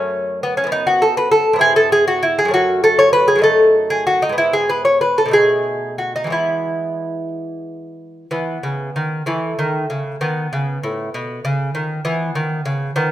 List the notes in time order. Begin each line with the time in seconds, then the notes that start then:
Already playing: F#2 A3 C#4
0.43 B3
0.57 C#4
0.64 F#2 B3
0.72 D#4
0.87 F#4
1.02 A4
1.17 B4
1.31 A4
1.53 G#2 B3
1.59 E4 G#4
1.76 A4
1.92 G#4
2.08 F#4
2.23 E4
2.39 G#4
2.45 F#2 A3
2.51 C#4 F#4
2.84 A4
2.99 C#5
3.13 B4
3.28 G#4
3.36 F#2 A3
3.42 D#4 A4
3.90 G#4
4.07 F#4
4.22 D#4
4.29 G#2 B3
4.38 E4
4.53 G#4
4.69 B4
4.85 C#5
5.01 B4
5.18 A4
5.26 B2 A3
5.31 D#4 G#4
5.98 F#4
6.16 D#4
6.24 E3 G#3
6.30 B3 E4
8.31 E3 B3
8.63 C#3
8.96 D#3
9.26 E3 A3
9.59 D#3
9.90 C#3
10.21 D#3 B3
10.53 C#3
10.83 A2
11.14 B2
11.45 C#3
11.75 D#3
12.05 E3 B3
12.35 D#3
12.65 C#3
12.96 D#3 B3